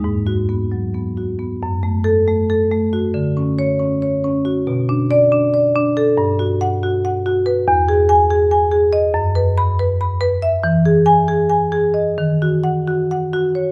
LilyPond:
\new Staff \with { instrumentName = "Marimba" } { \time 7/8 \key gis \minor \tempo 4 = 138 << { r8 fis'4 r2 | \key fis \minor r4 a'4 r4. | r4 cis''4 r4. | r4 d''4 r4. |
r4 fis''4 r4. | \key e \lydian r4 gis''4 r4. | r4 b''4 r4. | r4 gis''4 r4. |
r4 fis''4 r4. | } \\ { gis,4 b8 fis8 b8 fis'8 b8 | fis,8 a4 a8 a'8 a8 fis'8 | d8 cis'4 cis'8 cis''8 cis'8 fis'8 | b,8 d'4 d'8 d''8 d'8 a'8 |
g,8 fis'4 fis'8 fis''8 fis'8 b'8 | e,8 gis'4 gis'8 gis''8 gis'8 dis''8 | fis,8 b'4 b'8 b''8 b'8 e''8 | e8 gis'4 gis'8 gis''8 gis'8 dis''8 |
dis8 fis'4 fis'8 fis''8 fis'8 cis''8 | } >> }